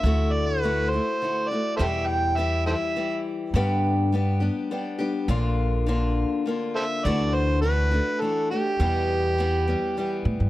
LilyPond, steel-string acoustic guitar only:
\new Staff \with { instrumentName = "Steel-string acoustic guitar" } { \time 3/4 \key d \mixolydian \tempo 4 = 103 <d a e' fis'>4 <d a e' fis'>8 <a e' fis'>8 <d a e' fis'>8 <a e' fis'>8 | <e, b, e g e' g'>4 <e g e' g'>8 <e g e' g'>8 <e g e' g'>4 | <g, d g b d' g'>4 <g b d' g'>8 <g b d' g'>8 <g b d' g'>8 <g b d' g'>8 | <bes, d bes d' f'>4 <d bes d' f'>4 <d bes d' f'>4 |
<d e a d' fis'>4 <e a d' fis'>8 <a d' fis'>8 <e a d' fis'>8 <a d' fis'>8 | <e, b, e g b g'>4 <e g b g'>8 <e g b g'>8 <e g b g'>4 | }